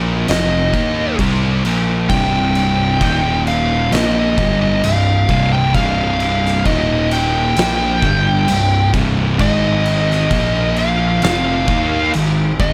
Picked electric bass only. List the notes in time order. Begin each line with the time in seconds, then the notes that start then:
Already playing: A#1
0.29 F1
0.74 D#2
1.19 C2
1.65 A#1
2.10 C1
3.01 D#1
3.92 A#1
4.38 G1
4.84 C1
5.29 C1
5.75 C1
6.66 D#1
7.57 A#1
8.03 G1
8.49 C1
8.94 C1
9.39 G#1
10.31 A#1
11.23 F1
11.68 D#2
12.15 G#1
12.60 G#1